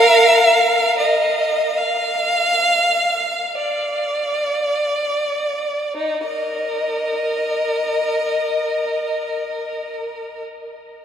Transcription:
Already playing: A#4 F5
0.99 D#5
1.77 F5
3.55 D5
5.97 D#4
6.26 A#4 D#5

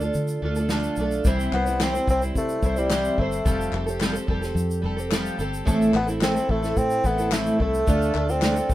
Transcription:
0.01 F4 A4, shaker
0.05 D4
0.14 D3, shaker
0.28 shaker
0.42 D2 A3 D4 F4 A4
0.56 D4 F4 A4, shaker
0.69 D3 A3 D4 F4 A4, snare, shaker
0.83 shaker
0.96 B1 A3 D4, shaker
1.00 F4 A4
1.11 shaker
1.25 C2 C3 E3 G3 C4 E4 C5, kick, shaker
1.40 shaker
1.52 C2 G3 B3 C4 E4 C5, clap
1.65 G3 C4 E4 C5, shaker
1.80 C3 E3 G3 C4 E4 C5, snare, clap, shaker
1.94 G3 C4 E4 C5, shaker
2.08 C2 G3 C4 E4 C5, kick, shaker
2.22 G3 C4 E4 C5, shaker
2.35 C3 A3, kick, shaker
2.49 shaker
2.62 C2 G3 C4 E4 C5, kick, shaker
2.76 G3 C4 E4 C5, shaker
2.90 C3 E3 G3 C4 E4 C5, snare, clap, shaker
3.04 shaker
3.18 G1 G3 A3 C4 E4 C5, kick
3.32 shaker
3.45 F1 F3 G3 C4 G4 A4, kick, shaker
3.61 shaker
3.72 F1 G3 C4 G4 A4, clap
3.86 C4 G4 A4, shaker
4.00 F3 G3 C4 G4 A4, snare, clap, shaker
4.13 C4 G4 A4, shaker
4.27 F1 G3 C4 G4 A4, kick
4.41 C4 G4 A4, snare, shaker
4.55 F2, shaker
4.71 shaker
4.82 F1 G3 C4 G4 A4
4.97 C4 G4 A4, shaker
5.11 F3 G3 C4 G4 A4, snare, clap, shaker
5.26 shaker
5.37 G1 G3 C4 G4 A4, shaker
5.54 shaker
5.65 A1 A2 E3 A3 C4 E4 A4, kick, shaker
5.82 shaker
5.93 A1 A3 B3 C4 E4 A4, clap
6.07 A3 C4 E4 A4, shaker
6.21 A2 E3 A3 C4 E4 A4, snare, clap, shaker
6.35 A3 C4 E4 A4, shaker
6.49 A1 A3 C4 E4 A4, kick
6.62 A3 C4 E4 A4, snare, shaker
6.77 A2 C4, kick, shaker
6.90 shaker
7.04 A1 A3 B3 C4 E4 A4, kick, shaker
7.18 A3 C4 E4 A4, shaker
7.31 A2 E3 A3 C4 E4 A4, snare, clap, shaker
7.46 shaker
7.58 C2 A3 C4 E4 A4, kick
7.74 shaker
7.87 D2 D3 A3 D4 F4 A4, kick, shaker
8.02 shaker
8.14 D2 A3 D4 F4 A4, clap
8.27 C4 D4 F4 A4, shaker
8.42 D3 A3 D4 F4 A4, snare, clap, shaker
8.55 D4 F4 A4, shaker
8.69 D2 A3 D4, kick, shaker

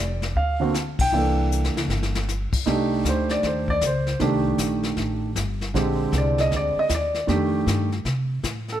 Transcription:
Already playing: F1 D5
0.22 snare
0.36 D2 F5, brush sweep, kick
0.60 D3 A#3 C4 F#4
0.74 snare, hi-hat pedal
0.99 B1 G5, kick, ride
1.12 C2 E3 A#3 D4 A4, brush sweep
1.52 hi-hat pedal
1.64 snare
1.75 C#2, snare
1.88 G1, snare
2.03 snare
2.15 snare
2.29 snare, hi-hat pedal
2.52 muted upright bass stroke, kick, crash
2.66 C2 A3 D4 D#4 G4, brush sweep, kick, snare
3.04 D2, kick, snare, hi-hat pedal
3.09 C5
3.29 D5, snare
3.43 D#2 C5, brush sweep, kick, snare
3.68 D5, kick
3.81 C#2, kick, snare, hi-hat pedal
3.87 C5
4.07 snare
4.20 C2 D#3 A3 D4 G4, brush sweep, kick, snare
4.58 A#1, kick, snare, hi-hat pedal
4.83 snare
4.97 A1, brush sweep, kick, snare
5.36 G1, kick, snare, hi-hat pedal
5.61 snare
5.74 A#1 D3 G#3 C4 G4, brush sweep, kick, snare
6.12 C2, kick, snare, hi-hat pedal
6.18 D5
6.38 D#5, snare
6.51 D2, brush sweep, kick, snare
6.56 D5
6.76 D#5, muted upright bass stroke
6.89 D#2, kick, snare, hi-hat pedal
6.95 D5
7.14 snare
7.27 F2 D#3 A3 D4 G4, brush sweep, kick, snare
7.66 G2, kick, snare, hi-hat pedal
7.92 snare
8.05 C3, brush sweep, kick, snare
8.43 A2, kick, snare, hi-hat pedal
8.68 A4, snare

